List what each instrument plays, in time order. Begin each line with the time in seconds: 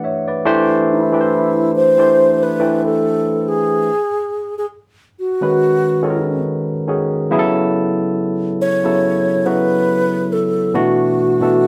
Already playing: tine electric piano E3 A3 D4 G4 B4 D5 F#5
0.04 tine electric piano C#5 E5
0.28 tine electric piano B4 D5
0.45 tine electric piano E3 A3 D4 G4 C5
0.91 alto flute E4
1.12 tine electric piano E3 A3 D4 G4 B4
1.21 tine electric piano C5
1.76 alto flute C5
1.98 tine electric piano E3 A3 D4 G4 C5
2.43 alto flute B4
2.59 tine electric piano E3 A3 D4 B4 G5
2.86 alto flute A4
3.48 alto flute G#4
4.58 alto flute G#4
5.19 alto flute F#4
5.41 tine electric piano D#3 G#3 C#4 F#4 B4
6.02 tine electric piano D#3 G#3 C#4 F#4 A4
6.10 tine electric piano A#4
6.88 tine electric piano D#3 G#3 C#4 F#4 G#4
7.31 tine electric piano C#3 F#3 B3 E4 G#4
7.39 tine electric piano A4
8.61 alto flute C#5
8.84 tine electric piano C#3 F#3 B3 E4 A4
9.45 tine electric piano C#3 F#3 B3 E4 F#4, alto flute B4
10.33 alto flute A4
10.74 tine electric piano B2 E3 A3 D4 F#4, alto flute F#4
11.41 tine electric piano B2 E3 A3 D4 A4